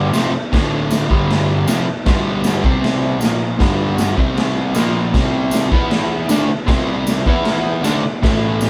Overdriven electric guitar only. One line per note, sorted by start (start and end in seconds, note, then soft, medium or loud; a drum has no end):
0.00 0.12 G2 medium
0.00 0.13 D3 medium
0.00 0.13 G3 loud
0.13 0.32 F2 medium
0.13 0.32 C3 loud
0.13 0.32 F3 medium
0.34 muted overdriven electric guitar stroke medium
0.52 1.09 D2 loud
0.52 1.10 A2 loud
0.52 1.09 D3 loud
1.10 1.67 G2 medium
1.10 1.67 D3 medium
1.10 1.67 G3 loud
1.67 1.86 F2 medium
1.67 1.86 C3 loud
1.67 1.87 F3 medium
1.87 muted overdriven electric guitar stroke medium
2.06 2.63 G2 loud
2.06 2.63 D3 loud
2.06 2.63 G3 loud
2.63 3.21 C3 medium
2.63 3.22 G3 medium
2.63 3.22 C4 medium
3.21 3.59 A#2 medium
3.21 3.60 F3 loud
3.21 3.60 A#3 loud
3.59 4.16 G2 loud
3.59 4.17 D3 loud
3.59 4.16 G3 loud
4.17 4.74 C3 medium
4.17 4.75 G3 medium
4.17 4.75 C4 loud
4.75 5.13 A#2 medium
4.75 5.14 F3 medium
4.75 5.14 A#3 medium
5.14 5.71 C3 loud
5.14 5.72 G3 medium
5.14 5.72 C4 loud
5.72 6.29 E3 medium
5.72 6.29 B3 medium
5.72 6.30 E4 medium
6.29 6.48 D3 medium
6.29 6.49 A3 loud
6.29 6.49 D4 loud
6.49 muted overdriven electric guitar stroke medium
6.67 7.25 C3 loud
6.67 7.25 G3 loud
6.67 7.26 C4 loud
7.27 7.83 E3 medium
7.27 7.84 B3 medium
7.27 7.84 E4 medium
7.83 8.02 D3 medium
7.83 8.03 A3 loud
7.83 8.03 D4 loud
8.04 muted overdriven electric guitar stroke medium
8.23 8.70 A2 loud
8.23 8.70 E3 loud
8.23 8.70 A3 loud